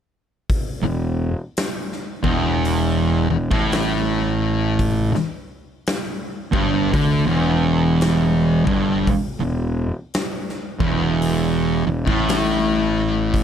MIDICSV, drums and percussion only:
0, 0, Header, 1, 2, 480
1, 0, Start_track
1, 0, Key_signature, 1, "minor"
1, 0, Tempo, 1069519
1, 224, Time_signature, 4, 2, 24, 8
1, 6030, End_track
2, 0, Start_track
2, 0, Title_t, "Drums"
2, 222, Note_on_c, 9, 46, 54
2, 223, Note_on_c, 9, 36, 97
2, 267, Note_off_c, 9, 46, 0
2, 268, Note_off_c, 9, 36, 0
2, 702, Note_on_c, 9, 46, 58
2, 708, Note_on_c, 9, 38, 98
2, 747, Note_off_c, 9, 46, 0
2, 753, Note_off_c, 9, 38, 0
2, 862, Note_on_c, 9, 38, 35
2, 907, Note_off_c, 9, 38, 0
2, 1005, Note_on_c, 9, 36, 99
2, 1050, Note_off_c, 9, 36, 0
2, 1188, Note_on_c, 9, 46, 55
2, 1233, Note_off_c, 9, 46, 0
2, 1577, Note_on_c, 9, 36, 109
2, 1622, Note_off_c, 9, 36, 0
2, 1669, Note_on_c, 9, 46, 55
2, 1675, Note_on_c, 9, 38, 107
2, 1714, Note_off_c, 9, 46, 0
2, 1720, Note_off_c, 9, 38, 0
2, 2151, Note_on_c, 9, 36, 97
2, 2151, Note_on_c, 9, 46, 58
2, 2196, Note_off_c, 9, 36, 0
2, 2196, Note_off_c, 9, 46, 0
2, 2310, Note_on_c, 9, 38, 34
2, 2355, Note_off_c, 9, 38, 0
2, 2632, Note_on_c, 9, 46, 52
2, 2637, Note_on_c, 9, 38, 105
2, 2676, Note_off_c, 9, 46, 0
2, 2682, Note_off_c, 9, 38, 0
2, 2932, Note_on_c, 9, 36, 97
2, 2977, Note_off_c, 9, 36, 0
2, 3113, Note_on_c, 9, 36, 104
2, 3115, Note_on_c, 9, 46, 50
2, 3158, Note_off_c, 9, 36, 0
2, 3160, Note_off_c, 9, 46, 0
2, 3594, Note_on_c, 9, 46, 50
2, 3600, Note_on_c, 9, 38, 107
2, 3639, Note_off_c, 9, 46, 0
2, 3645, Note_off_c, 9, 38, 0
2, 3891, Note_on_c, 9, 36, 101
2, 3936, Note_off_c, 9, 36, 0
2, 4072, Note_on_c, 9, 36, 102
2, 4074, Note_on_c, 9, 46, 52
2, 4117, Note_off_c, 9, 36, 0
2, 4119, Note_off_c, 9, 46, 0
2, 4549, Note_on_c, 9, 46, 54
2, 4555, Note_on_c, 9, 38, 105
2, 4594, Note_off_c, 9, 46, 0
2, 4600, Note_off_c, 9, 38, 0
2, 4709, Note_on_c, 9, 38, 33
2, 4754, Note_off_c, 9, 38, 0
2, 4849, Note_on_c, 9, 36, 103
2, 4893, Note_off_c, 9, 36, 0
2, 5034, Note_on_c, 9, 46, 59
2, 5079, Note_off_c, 9, 46, 0
2, 5419, Note_on_c, 9, 36, 106
2, 5464, Note_off_c, 9, 36, 0
2, 5514, Note_on_c, 9, 46, 61
2, 5520, Note_on_c, 9, 38, 114
2, 5559, Note_off_c, 9, 46, 0
2, 5565, Note_off_c, 9, 38, 0
2, 5987, Note_on_c, 9, 36, 95
2, 5991, Note_on_c, 9, 46, 61
2, 6030, Note_off_c, 9, 36, 0
2, 6030, Note_off_c, 9, 46, 0
2, 6030, End_track
0, 0, End_of_file